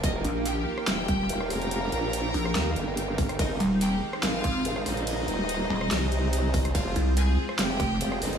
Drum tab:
RD |----------------|----------------|x---x---x---x---|x---x---x---x---|
HH |x-x-x---x-x-x-ox|x-x-x-o-x-x-x-ox|x-x-x---x-x-x-ox|x-x-x---x-x-x-ox|
SD |-------ro----rr-|-------ro------r|-------ro----rr-|-------ro------r|
BD |o---------o-----|--------------o-|o---------o-----|--------------o-|

RD |x---x---x---x---|
HH |x-x-x---x-x-x-ox|
SD |-------ro----r--|
BD |o---------o-----|